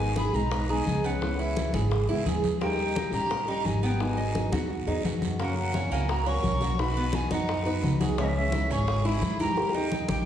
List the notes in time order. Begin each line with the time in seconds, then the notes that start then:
Already playing: G#1 D#3 G#3 B3 D#4 G#4 G#5
0.16 G#4 B5, high bongo, high conga, short guiro
0.33 B1 G#3 B3 D#4 G#4 A#5, high bongo, high conga, short guiro
0.51 B4, muted nylon-string guitar stroke, high bongo, high conga, long guiro
0.69 G#3 B3 D#4 G#4 G#5, high bongo, high conga
0.85 C#2 G#3 B3, high bongo, low bongo, high conga, short guiro
1.04 B3 C#4 F#5, high bongo, short guiro
1.21 C#3 E3 G#3 B3 E4, high bongo, high conga, long guiro
1.39 E4, high conga
1.56 high bongo, high conga, short guiro
1.73 G#1 E3 G#3 B3 E4 G#4, high bongo, high conga, short guiro
1.91 muted nylon-string guitar stroke, high bongo, high conga, long guiro
2.08 C#2 E3 G#3 B3 E4, high bongo, high conga
2.25 D#2 G#3 B3 E4 G#4, high bongo, low bongo, high conga, short guiro
2.44 high bongo, high conga, short guiro
2.60 D#3 G3 A#3 C#4 D#4 G4 G5, high bongo, high conga, long guiro
2.79 high conga
2.95 D#4, high bongo, high conga, short guiro
3.12 A#1 G3 C#4 G4 A#5, high bongo, high conga, short guiro
3.30 A#4, muted nylon-string guitar stroke, high bongo, high conga, long guiro
3.47 G3 C#4 D#4 G4 A#5, high bongo, high conga
3.64 G#1 D#3 G3 C#4 D#4 G4 G#5, high bongo, low bongo, high conga, short guiro
3.83 B3 D#4 G5, high bongo, short guiro
4.00 D#3 F#3 B3 D#4 G#4 G#5, high bongo, high conga, long guiro
4.17 D#4, high conga
4.35 high bongo, high conga, short guiro
4.51 D#2 F#3 B3 D#4 F#4 G#4, high bongo, high conga, short guiro
4.69 muted nylon-string guitar stroke, high bongo, high conga, long guiro
4.86 E2 F#3 B3 D#4 G#4, low bongo, high conga
5.04 F#2 F#3 B3 D#4 F#4 G#4, low bongo, high conga, short guiro
5.22 low bongo, high conga, short guiro
5.39 C#3 F#3 A#3 C#4 F#4 F#5, high bongo, high conga, long guiro
5.57 C#4 F#5, high conga
5.74 F#3 A#3 C#4 F#4, high bongo, high conga, short guiro
5.91 C#2 A#3 E4 G#5, high bongo, high conga, short guiro
6.09 F#4 A#5, muted nylon-string guitar stroke, high bongo, high conga, long guiro
6.26 F#3 A#3 C#4 F#4 A#4 C#6, high bongo, high conga
6.43 B1 F#3 A#3 C#4 F#4, high bongo, low bongo, high conga, short guiro
6.60 F#3 A#3 C#4 F#4, high bongo, high conga, short guiro
6.78 B2 F#3 B3 D#4 F#4 B5, high bongo, high conga, long guiro
6.96 B3, high conga
7.12 F#3 B3 D#4 F#4 G#5, high bongo, high conga, short guiro
7.30 F#2 D#4 F#5, high bongo, high conga, short guiro
7.47 muted nylon-string guitar stroke, high bongo, high conga, long guiro
7.65 F#3 B3 D#4 F#4 B4, high bongo, high conga
7.82 C#2 F#3 B3 D#4 F#4, high bongo, low bongo, high conga, short guiro
8.00 F#3 B3 D#4 F#4 G#4, high bongo, high conga, short guiro
8.18 C#3 E3 G#3 C#4 D#4 E4 E5, high bongo, high conga, long guiro
8.23 B3 D#5
8.28 C#4 E5
8.35 C#4 E5, high conga
8.52 E3 G#3 D#4 E4, high bongo, high conga, short guiro
8.69 G#1 C#4 G#4 C#6, high bongo, high conga, short guiro
8.87 muted nylon-string guitar stroke, high bongo, high conga, long guiro
9.04 E3 G#3 D#4 E4 G#4 B5, high bongo, high conga
9.21 D#2 E3 G#3 D#4 E4, high bongo, low bongo, high conga, short guiro
9.39 E3 G#3 D#4 E4 G4 A#4 A#5, high bongo, high conga, short guiro
9.56 D#3 A#3 D#4 G4, high bongo, high conga, long guiro
9.69 D#4, high bongo
9.74 D#4 G5, high conga
9.81 high bongo
9.91 D#3 A#3 D#4 G4, low bongo, high conga, short guiro
10.08 A#1 D#4 G4 G5, high conga, short guiro
10.14 low bongo